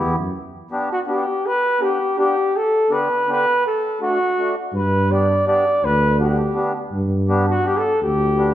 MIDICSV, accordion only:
0, 0, Header, 1, 2, 480
1, 0, Start_track
1, 0, Key_signature, 1, "major"
1, 0, Tempo, 364742
1, 462, Time_signature, 3, 2, 24, 8
1, 11239, End_track
2, 0, Start_track
2, 0, Title_t, "Accordion"
2, 0, Program_c, 0, 21
2, 0, Note_on_c, 0, 59, 69
2, 0, Note_on_c, 0, 64, 71
2, 0, Note_on_c, 0, 67, 73
2, 200, Note_off_c, 0, 59, 0
2, 204, Note_off_c, 0, 64, 0
2, 209, Note_off_c, 0, 67, 0
2, 929, Note_on_c, 0, 59, 67
2, 939, Note_on_c, 0, 62, 57
2, 943, Note_on_c, 0, 67, 74
2, 1170, Note_off_c, 0, 59, 0
2, 1175, Note_off_c, 0, 62, 0
2, 1177, Note_off_c, 0, 67, 0
2, 1403, Note_on_c, 0, 59, 57
2, 1409, Note_on_c, 0, 62, 52
2, 1415, Note_on_c, 0, 67, 64
2, 1647, Note_off_c, 0, 59, 0
2, 1651, Note_off_c, 0, 62, 0
2, 1654, Note_off_c, 0, 67, 0
2, 2363, Note_on_c, 0, 62, 50
2, 2364, Note_on_c, 0, 59, 63
2, 2377, Note_on_c, 0, 67, 55
2, 2610, Note_off_c, 0, 59, 0
2, 2610, Note_off_c, 0, 62, 0
2, 2616, Note_off_c, 0, 67, 0
2, 2854, Note_on_c, 0, 59, 68
2, 2860, Note_on_c, 0, 62, 55
2, 2877, Note_on_c, 0, 67, 66
2, 3095, Note_off_c, 0, 59, 0
2, 3098, Note_off_c, 0, 62, 0
2, 3106, Note_off_c, 0, 67, 0
2, 3810, Note_on_c, 0, 59, 55
2, 3812, Note_on_c, 0, 50, 60
2, 3818, Note_on_c, 0, 62, 54
2, 3824, Note_on_c, 0, 67, 62
2, 4051, Note_off_c, 0, 59, 0
2, 4052, Note_off_c, 0, 50, 0
2, 4055, Note_off_c, 0, 62, 0
2, 4058, Note_off_c, 0, 67, 0
2, 4300, Note_on_c, 0, 50, 64
2, 4305, Note_on_c, 0, 59, 59
2, 4306, Note_on_c, 0, 62, 65
2, 4320, Note_on_c, 0, 67, 67
2, 4536, Note_off_c, 0, 50, 0
2, 4539, Note_off_c, 0, 59, 0
2, 4539, Note_off_c, 0, 62, 0
2, 4546, Note_off_c, 0, 67, 0
2, 5266, Note_on_c, 0, 57, 56
2, 5278, Note_on_c, 0, 62, 53
2, 5282, Note_on_c, 0, 66, 56
2, 5500, Note_off_c, 0, 57, 0
2, 5506, Note_off_c, 0, 62, 0
2, 5508, Note_off_c, 0, 66, 0
2, 5761, Note_on_c, 0, 57, 56
2, 5767, Note_on_c, 0, 62, 53
2, 5782, Note_on_c, 0, 66, 59
2, 5990, Note_off_c, 0, 57, 0
2, 5993, Note_off_c, 0, 62, 0
2, 6000, Note_off_c, 0, 66, 0
2, 6716, Note_on_c, 0, 59, 48
2, 6719, Note_on_c, 0, 62, 50
2, 6728, Note_on_c, 0, 67, 56
2, 6947, Note_off_c, 0, 59, 0
2, 6949, Note_off_c, 0, 62, 0
2, 6954, Note_off_c, 0, 67, 0
2, 7186, Note_on_c, 0, 59, 70
2, 7194, Note_on_c, 0, 62, 53
2, 7200, Note_on_c, 0, 67, 74
2, 7421, Note_off_c, 0, 59, 0
2, 7425, Note_off_c, 0, 62, 0
2, 7428, Note_off_c, 0, 67, 0
2, 8148, Note_on_c, 0, 59, 61
2, 8151, Note_on_c, 0, 62, 52
2, 8161, Note_on_c, 0, 67, 63
2, 8380, Note_off_c, 0, 59, 0
2, 8381, Note_off_c, 0, 62, 0
2, 8386, Note_off_c, 0, 67, 0
2, 8598, Note_on_c, 0, 59, 61
2, 8612, Note_on_c, 0, 62, 54
2, 8623, Note_on_c, 0, 67, 70
2, 8843, Note_off_c, 0, 59, 0
2, 8850, Note_off_c, 0, 62, 0
2, 8855, Note_off_c, 0, 67, 0
2, 9583, Note_on_c, 0, 59, 80
2, 9587, Note_on_c, 0, 62, 58
2, 9595, Note_on_c, 0, 67, 83
2, 9814, Note_off_c, 0, 59, 0
2, 9816, Note_off_c, 0, 62, 0
2, 9820, Note_off_c, 0, 67, 0
2, 10054, Note_on_c, 0, 59, 70
2, 10058, Note_on_c, 0, 62, 62
2, 10072, Note_on_c, 0, 67, 70
2, 10289, Note_off_c, 0, 59, 0
2, 10290, Note_off_c, 0, 62, 0
2, 10298, Note_off_c, 0, 67, 0
2, 11008, Note_on_c, 0, 59, 61
2, 11016, Note_on_c, 0, 62, 44
2, 11031, Note_on_c, 0, 67, 72
2, 11239, Note_off_c, 0, 59, 0
2, 11239, Note_off_c, 0, 62, 0
2, 11239, Note_off_c, 0, 67, 0
2, 11239, End_track
0, 0, End_of_file